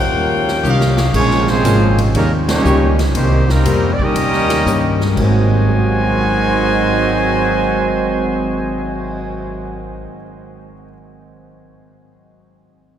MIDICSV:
0, 0, Header, 1, 11, 480
1, 0, Start_track
1, 0, Tempo, 503356
1, 1091, Time_signature, 4, 2, 24, 8
1, 12382, End_track
2, 0, Start_track
2, 0, Title_t, "Trumpet section"
2, 0, Program_c, 0, 61
2, 600, Note_on_c, 0, 67, 84
2, 604, Note_on_c, 0, 73, 76
2, 604, Note_on_c, 0, 75, 70
2, 604, Note_on_c, 0, 77, 98
2, 1085, Note_off_c, 0, 67, 0
2, 1087, Note_off_c, 0, 73, 0
2, 1087, Note_off_c, 0, 75, 0
2, 1087, Note_off_c, 0, 77, 0
2, 12382, End_track
3, 0, Start_track
3, 0, Title_t, "Saxophone section"
3, 0, Program_c, 1, 65
3, 0, Note_on_c, 1, 65, 91
3, 0, Note_on_c, 1, 70, 89
3, 0, Note_on_c, 1, 73, 89
3, 0, Note_on_c, 1, 79, 98
3, 945, Note_off_c, 1, 79, 0
3, 946, Note_off_c, 1, 65, 0
3, 947, Note_off_c, 1, 70, 0
3, 947, Note_off_c, 1, 73, 0
3, 12382, End_track
4, 0, Start_track
4, 0, Title_t, "Trumpet section"
4, 0, Program_c, 2, 61
4, 1096, Note_on_c, 2, 73, 109
4, 1097, Note_on_c, 2, 68, 95
4, 1098, Note_on_c, 2, 58, 90
4, 1099, Note_on_c, 2, 65, 88
4, 1396, Note_off_c, 2, 73, 0
4, 1397, Note_off_c, 2, 68, 0
4, 1398, Note_off_c, 2, 58, 0
4, 1398, Note_off_c, 2, 65, 0
4, 1424, Note_on_c, 2, 58, 91
4, 1424, Note_on_c, 2, 68, 92
4, 1425, Note_on_c, 2, 72, 104
4, 1429, Note_on_c, 2, 65, 88
4, 1899, Note_off_c, 2, 58, 0
4, 1900, Note_off_c, 2, 68, 0
4, 1900, Note_off_c, 2, 72, 0
4, 1902, Note_off_c, 2, 65, 0
4, 2063, Note_on_c, 2, 55, 81
4, 2064, Note_on_c, 2, 61, 90
4, 2064, Note_on_c, 2, 63, 82
4, 2064, Note_on_c, 2, 70, 96
4, 2206, Note_off_c, 2, 55, 0
4, 2207, Note_off_c, 2, 61, 0
4, 2207, Note_off_c, 2, 63, 0
4, 2207, Note_off_c, 2, 70, 0
4, 2383, Note_on_c, 2, 67, 98
4, 2385, Note_on_c, 2, 63, 88
4, 2385, Note_on_c, 2, 73, 103
4, 2389, Note_on_c, 2, 58, 81
4, 2825, Note_off_c, 2, 67, 0
4, 2826, Note_off_c, 2, 63, 0
4, 2826, Note_off_c, 2, 73, 0
4, 2828, Note_off_c, 2, 58, 0
4, 3017, Note_on_c, 2, 63, 77
4, 3020, Note_on_c, 2, 67, 87
4, 3021, Note_on_c, 2, 72, 94
4, 3023, Note_on_c, 2, 58, 87
4, 3316, Note_off_c, 2, 63, 0
4, 3318, Note_off_c, 2, 67, 0
4, 3318, Note_off_c, 2, 72, 0
4, 3319, Note_off_c, 2, 58, 0
4, 3345, Note_on_c, 2, 60, 86
4, 3345, Note_on_c, 2, 70, 101
4, 3347, Note_on_c, 2, 55, 83
4, 3350, Note_on_c, 2, 63, 88
4, 3729, Note_off_c, 2, 60, 0
4, 3729, Note_off_c, 2, 70, 0
4, 3730, Note_off_c, 2, 55, 0
4, 3731, Note_off_c, 2, 63, 0
4, 3750, Note_on_c, 2, 74, 87
4, 3827, Note_off_c, 2, 74, 0
4, 3844, Note_on_c, 2, 67, 98
4, 3848, Note_on_c, 2, 61, 110
4, 3848, Note_on_c, 2, 70, 98
4, 3850, Note_on_c, 2, 75, 115
4, 4788, Note_off_c, 2, 67, 0
4, 4790, Note_off_c, 2, 70, 0
4, 4791, Note_off_c, 2, 61, 0
4, 4791, Note_off_c, 2, 75, 0
4, 4942, Note_on_c, 2, 66, 84
4, 4946, Note_on_c, 2, 72, 96
4, 4947, Note_on_c, 2, 75, 89
4, 4950, Note_on_c, 2, 80, 108
4, 9500, Note_off_c, 2, 66, 0
4, 9502, Note_off_c, 2, 72, 0
4, 9502, Note_off_c, 2, 75, 0
4, 9503, Note_off_c, 2, 80, 0
4, 12382, End_track
5, 0, Start_track
5, 0, Title_t, "Grand piano"
5, 0, Program_c, 3, 0
5, 609, Note_on_c, 3, 55, 69
5, 612, Note_on_c, 3, 58, 63
5, 616, Note_on_c, 3, 61, 59
5, 617, Note_on_c, 3, 63, 65
5, 621, Note_on_c, 3, 65, 75
5, 903, Note_off_c, 3, 55, 0
5, 905, Note_off_c, 3, 58, 0
5, 907, Note_off_c, 3, 61, 0
5, 907, Note_off_c, 3, 63, 0
5, 909, Note_off_c, 3, 65, 0
5, 1561, Note_on_c, 3, 56, 71
5, 1565, Note_on_c, 3, 58, 66
5, 1566, Note_on_c, 3, 60, 61
5, 1572, Note_on_c, 3, 61, 63
5, 1575, Note_on_c, 3, 65, 79
5, 1859, Note_off_c, 3, 56, 0
5, 1860, Note_off_c, 3, 58, 0
5, 1861, Note_off_c, 3, 60, 0
5, 1864, Note_off_c, 3, 61, 0
5, 1866, Note_off_c, 3, 65, 0
5, 2534, Note_on_c, 3, 55, 71
5, 2535, Note_on_c, 3, 58, 71
5, 2538, Note_on_c, 3, 61, 67
5, 2542, Note_on_c, 3, 63, 66
5, 2546, Note_on_c, 3, 67, 81
5, 2825, Note_off_c, 3, 55, 0
5, 2825, Note_off_c, 3, 58, 0
5, 2827, Note_off_c, 3, 61, 0
5, 2828, Note_off_c, 3, 63, 0
5, 2831, Note_off_c, 3, 67, 0
5, 3482, Note_on_c, 3, 55, 68
5, 3484, Note_on_c, 3, 58, 65
5, 3490, Note_on_c, 3, 60, 61
5, 3491, Note_on_c, 3, 63, 65
5, 3496, Note_on_c, 3, 67, 80
5, 3778, Note_off_c, 3, 55, 0
5, 3779, Note_off_c, 3, 58, 0
5, 3782, Note_off_c, 3, 60, 0
5, 3783, Note_off_c, 3, 63, 0
5, 3785, Note_off_c, 3, 67, 0
5, 4442, Note_on_c, 3, 55, 67
5, 4451, Note_on_c, 3, 61, 63
5, 4452, Note_on_c, 3, 58, 69
5, 4453, Note_on_c, 3, 63, 61
5, 4455, Note_on_c, 3, 67, 72
5, 4738, Note_off_c, 3, 55, 0
5, 4743, Note_off_c, 3, 58, 0
5, 4743, Note_off_c, 3, 61, 0
5, 4744, Note_off_c, 3, 63, 0
5, 4744, Note_off_c, 3, 67, 0
5, 4809, Note_on_c, 3, 44, 63
5, 4858, Note_on_c, 3, 51, 60
5, 4908, Note_on_c, 3, 54, 56
5, 4955, Note_on_c, 3, 58, 64
5, 5000, Note_on_c, 3, 60, 57
5, 5048, Note_on_c, 3, 66, 76
5, 5413, Note_on_c, 3, 68, 46
5, 5485, Note_on_c, 3, 72, 44
5, 5563, Note_on_c, 3, 77, 38
5, 5649, Note_on_c, 3, 80, 40
5, 5749, Note_on_c, 3, 84, 39
5, 5848, Note_on_c, 3, 89, 38
5, 9503, Note_off_c, 3, 44, 0
5, 9553, Note_off_c, 3, 51, 0
5, 9602, Note_off_c, 3, 54, 0
5, 9650, Note_off_c, 3, 58, 0
5, 9695, Note_off_c, 3, 60, 0
5, 9742, Note_off_c, 3, 66, 0
5, 10070, Note_off_c, 3, 68, 0
5, 10142, Note_off_c, 3, 72, 0
5, 10220, Note_off_c, 3, 77, 0
5, 10281, Note_off_c, 3, 80, 0
5, 10331, Note_off_c, 3, 84, 0
5, 10380, Note_off_c, 3, 89, 0
5, 12382, End_track
6, 0, Start_track
6, 0, Title_t, "Hollow-body jazz guitar"
6, 0, Program_c, 4, 26
6, 125, Note_on_c, 4, 51, 42
6, 136, Note_on_c, 4, 55, 48
6, 151, Note_on_c, 4, 61, 55
6, 157, Note_on_c, 4, 65, 46
6, 469, Note_off_c, 4, 51, 0
6, 475, Note_off_c, 4, 55, 0
6, 483, Note_off_c, 4, 61, 0
6, 485, Note_off_c, 4, 65, 0
6, 612, Note_on_c, 4, 51, 62
6, 624, Note_on_c, 4, 55, 75
6, 631, Note_on_c, 4, 61, 72
6, 634, Note_on_c, 4, 65, 66
6, 953, Note_off_c, 4, 51, 0
6, 959, Note_off_c, 4, 55, 0
6, 962, Note_off_c, 4, 61, 0
6, 964, Note_off_c, 4, 65, 0
6, 1088, Note_on_c, 4, 46, 49
6, 1099, Note_on_c, 4, 56, 48
6, 1104, Note_on_c, 4, 61, 51
6, 1121, Note_on_c, 4, 65, 50
6, 1430, Note_off_c, 4, 46, 0
6, 1436, Note_off_c, 4, 56, 0
6, 1438, Note_off_c, 4, 61, 0
6, 1447, Note_off_c, 4, 65, 0
6, 1562, Note_on_c, 4, 46, 64
6, 1571, Note_on_c, 4, 56, 71
6, 1580, Note_on_c, 4, 61, 63
6, 1584, Note_on_c, 4, 65, 72
6, 1907, Note_off_c, 4, 46, 0
6, 1912, Note_off_c, 4, 56, 0
6, 1916, Note_off_c, 4, 61, 0
6, 1918, Note_off_c, 4, 65, 0
6, 2043, Note_on_c, 4, 51, 55
6, 2056, Note_on_c, 4, 58, 49
6, 2059, Note_on_c, 4, 61, 57
6, 2071, Note_on_c, 4, 67, 56
6, 2387, Note_off_c, 4, 51, 0
6, 2394, Note_off_c, 4, 58, 0
6, 2395, Note_off_c, 4, 61, 0
6, 2401, Note_off_c, 4, 67, 0
6, 2521, Note_on_c, 4, 51, 66
6, 2530, Note_on_c, 4, 58, 76
6, 2532, Note_on_c, 4, 61, 66
6, 2539, Note_on_c, 4, 67, 76
6, 2866, Note_off_c, 4, 51, 0
6, 2870, Note_off_c, 4, 58, 0
6, 2871, Note_off_c, 4, 61, 0
6, 2875, Note_off_c, 4, 67, 0
6, 2993, Note_on_c, 4, 48, 48
6, 3005, Note_on_c, 4, 58, 51
6, 3015, Note_on_c, 4, 63, 58
6, 3023, Note_on_c, 4, 67, 59
6, 3342, Note_off_c, 4, 48, 0
6, 3348, Note_off_c, 4, 58, 0
6, 3353, Note_off_c, 4, 63, 0
6, 3356, Note_off_c, 4, 67, 0
6, 3486, Note_on_c, 4, 48, 62
6, 3492, Note_on_c, 4, 58, 67
6, 3500, Note_on_c, 4, 63, 65
6, 3505, Note_on_c, 4, 67, 79
6, 3828, Note_off_c, 4, 48, 0
6, 3831, Note_off_c, 4, 58, 0
6, 3835, Note_off_c, 4, 63, 0
6, 3838, Note_off_c, 4, 67, 0
6, 3955, Note_on_c, 4, 51, 49
6, 3966, Note_on_c, 4, 58, 51
6, 3981, Note_on_c, 4, 61, 51
6, 3984, Note_on_c, 4, 67, 53
6, 4302, Note_off_c, 4, 51, 0
6, 4308, Note_off_c, 4, 58, 0
6, 4315, Note_off_c, 4, 61, 0
6, 4317, Note_off_c, 4, 67, 0
6, 4441, Note_on_c, 4, 51, 78
6, 4445, Note_on_c, 4, 58, 71
6, 4455, Note_on_c, 4, 61, 68
6, 4457, Note_on_c, 4, 67, 84
6, 4785, Note_off_c, 4, 51, 0
6, 4788, Note_off_c, 4, 58, 0
6, 4792, Note_off_c, 4, 61, 0
6, 4794, Note_off_c, 4, 67, 0
6, 4895, Note_on_c, 4, 44, 60
6, 4947, Note_on_c, 4, 54, 67
6, 4992, Note_on_c, 4, 60, 69
6, 9590, Note_off_c, 4, 44, 0
6, 9641, Note_off_c, 4, 54, 0
6, 9687, Note_off_c, 4, 60, 0
6, 12382, End_track
7, 0, Start_track
7, 0, Title_t, "Trombone section"
7, 0, Program_c, 5, 61
7, 0, Note_on_c, 5, 58, 81
7, 0, Note_on_c, 5, 61, 75
7, 0, Note_on_c, 5, 67, 78
7, 942, Note_off_c, 5, 67, 0
7, 943, Note_off_c, 5, 61, 0
7, 944, Note_off_c, 5, 58, 0
7, 1089, Note_on_c, 5, 56, 100
7, 1091, Note_on_c, 5, 61, 96
7, 1096, Note_on_c, 5, 53, 94
7, 1393, Note_off_c, 5, 56, 0
7, 1393, Note_off_c, 5, 61, 0
7, 1396, Note_off_c, 5, 53, 0
7, 1431, Note_on_c, 5, 56, 107
7, 1432, Note_on_c, 5, 53, 109
7, 1434, Note_on_c, 5, 60, 106
7, 1903, Note_off_c, 5, 56, 0
7, 1904, Note_off_c, 5, 53, 0
7, 1904, Note_off_c, 5, 60, 0
7, 2049, Note_on_c, 5, 58, 82
7, 2052, Note_on_c, 5, 49, 84
7, 2052, Note_on_c, 5, 55, 81
7, 2196, Note_off_c, 5, 58, 0
7, 2198, Note_off_c, 5, 49, 0
7, 2198, Note_off_c, 5, 55, 0
7, 2366, Note_on_c, 5, 58, 97
7, 2367, Note_on_c, 5, 61, 100
7, 2373, Note_on_c, 5, 55, 99
7, 2816, Note_off_c, 5, 58, 0
7, 2817, Note_off_c, 5, 61, 0
7, 2820, Note_off_c, 5, 55, 0
7, 3004, Note_on_c, 5, 55, 83
7, 3006, Note_on_c, 5, 51, 84
7, 3007, Note_on_c, 5, 60, 83
7, 3309, Note_off_c, 5, 55, 0
7, 3310, Note_off_c, 5, 51, 0
7, 3311, Note_off_c, 5, 60, 0
7, 3322, Note_on_c, 5, 55, 87
7, 3323, Note_on_c, 5, 51, 89
7, 3325, Note_on_c, 5, 58, 93
7, 3717, Note_off_c, 5, 55, 0
7, 3718, Note_off_c, 5, 51, 0
7, 3718, Note_off_c, 5, 58, 0
7, 3812, Note_on_c, 5, 63, 94
7, 3818, Note_on_c, 5, 55, 95
7, 3822, Note_on_c, 5, 58, 90
7, 4773, Note_off_c, 5, 63, 0
7, 4775, Note_off_c, 5, 55, 0
7, 4777, Note_off_c, 5, 58, 0
7, 4927, Note_on_c, 5, 60, 96
7, 4929, Note_on_c, 5, 51, 104
7, 4933, Note_on_c, 5, 44, 99
7, 4934, Note_on_c, 5, 54, 99
7, 9492, Note_off_c, 5, 60, 0
7, 9493, Note_off_c, 5, 51, 0
7, 9495, Note_off_c, 5, 44, 0
7, 9496, Note_off_c, 5, 54, 0
7, 12382, End_track
8, 0, Start_track
8, 0, Title_t, "Upright bass"
8, 0, Program_c, 6, 32
8, 0, Note_on_c, 6, 41, 91
8, 116, Note_off_c, 6, 41, 0
8, 131, Note_on_c, 6, 39, 80
8, 596, Note_off_c, 6, 39, 0
8, 604, Note_on_c, 6, 36, 86
8, 1072, Note_off_c, 6, 36, 0
8, 1088, Note_on_c, 6, 34, 88
8, 1554, Note_off_c, 6, 34, 0
8, 1566, Note_on_c, 6, 32, 105
8, 2033, Note_off_c, 6, 32, 0
8, 2045, Note_on_c, 6, 39, 94
8, 2512, Note_off_c, 6, 39, 0
8, 2524, Note_on_c, 6, 37, 97
8, 2992, Note_off_c, 6, 37, 0
8, 3003, Note_on_c, 6, 36, 98
8, 3470, Note_off_c, 6, 36, 0
8, 3484, Note_on_c, 6, 41, 96
8, 3789, Note_off_c, 6, 41, 0
8, 3962, Note_on_c, 6, 39, 89
8, 4430, Note_off_c, 6, 39, 0
8, 4444, Note_on_c, 6, 43, 97
8, 4911, Note_off_c, 6, 43, 0
8, 4929, Note_on_c, 6, 32, 99
8, 9585, Note_off_c, 6, 32, 0
8, 12382, End_track
9, 0, Start_track
9, 0, Title_t, "Cymbal swell"
9, 5259, Note_on_c, 9, 59, 47
9, 8678, Note_off_c, 9, 59, 0
9, 12382, End_track
10, 0, Start_track
10, 0, Title_t, "Muted upright bass strokes"
10, 3807, Note_on_c, 9, 29, 48
10, 3903, Note_off_c, 9, 29, 0
10, 12382, End_track
11, 0, Start_track
11, 0, Title_t, "Drums"
11, 459, Note_on_c, 9, 38, 53
11, 554, Note_off_c, 9, 38, 0
11, 614, Note_on_c, 9, 44, 54
11, 710, Note_off_c, 9, 44, 0
11, 770, Note_on_c, 9, 38, 61
11, 866, Note_off_c, 9, 38, 0
11, 926, Note_on_c, 9, 38, 80
11, 1021, Note_off_c, 9, 38, 0
11, 1088, Note_on_c, 9, 36, 86
11, 1088, Note_on_c, 9, 49, 86
11, 1183, Note_off_c, 9, 36, 0
11, 1184, Note_off_c, 9, 49, 0
11, 1247, Note_on_c, 9, 38, 32
11, 1342, Note_off_c, 9, 38, 0
11, 1403, Note_on_c, 9, 38, 51
11, 1499, Note_off_c, 9, 38, 0
11, 1566, Note_on_c, 9, 36, 22
11, 1571, Note_on_c, 9, 44, 62
11, 1571, Note_on_c, 9, 51, 69
11, 1661, Note_off_c, 9, 36, 0
11, 1667, Note_off_c, 9, 44, 0
11, 1667, Note_off_c, 9, 51, 0
11, 1892, Note_on_c, 9, 51, 59
11, 1987, Note_off_c, 9, 51, 0
11, 2044, Note_on_c, 9, 36, 30
11, 2047, Note_on_c, 9, 51, 71
11, 2139, Note_off_c, 9, 36, 0
11, 2142, Note_off_c, 9, 51, 0
11, 2370, Note_on_c, 9, 38, 94
11, 2371, Note_on_c, 9, 51, 72
11, 2466, Note_off_c, 9, 38, 0
11, 2467, Note_off_c, 9, 51, 0
11, 2525, Note_on_c, 9, 44, 64
11, 2621, Note_off_c, 9, 44, 0
11, 2851, Note_on_c, 9, 38, 61
11, 2852, Note_on_c, 9, 51, 55
11, 2946, Note_off_c, 9, 38, 0
11, 2947, Note_off_c, 9, 51, 0
11, 3002, Note_on_c, 9, 36, 24
11, 3002, Note_on_c, 9, 51, 73
11, 3097, Note_off_c, 9, 36, 0
11, 3097, Note_off_c, 9, 51, 0
11, 3332, Note_on_c, 9, 38, 58
11, 3427, Note_off_c, 9, 38, 0
11, 3484, Note_on_c, 9, 36, 23
11, 3485, Note_on_c, 9, 44, 57
11, 3485, Note_on_c, 9, 51, 75
11, 3580, Note_off_c, 9, 36, 0
11, 3580, Note_off_c, 9, 44, 0
11, 3580, Note_off_c, 9, 51, 0
11, 3809, Note_on_c, 9, 36, 63
11, 3904, Note_off_c, 9, 36, 0
11, 3963, Note_on_c, 9, 51, 74
11, 4058, Note_off_c, 9, 51, 0
11, 4127, Note_on_c, 9, 38, 29
11, 4222, Note_off_c, 9, 38, 0
11, 4284, Note_on_c, 9, 38, 54
11, 4292, Note_on_c, 9, 51, 76
11, 4380, Note_off_c, 9, 38, 0
11, 4387, Note_off_c, 9, 51, 0
11, 4445, Note_on_c, 9, 36, 20
11, 4447, Note_on_c, 9, 44, 70
11, 4541, Note_off_c, 9, 36, 0
11, 4543, Note_off_c, 9, 44, 0
11, 4775, Note_on_c, 9, 38, 43
11, 4870, Note_off_c, 9, 38, 0
11, 4928, Note_on_c, 9, 36, 59
11, 4931, Note_on_c, 9, 49, 67
11, 5023, Note_off_c, 9, 36, 0
11, 5027, Note_off_c, 9, 49, 0
11, 12382, End_track
0, 0, End_of_file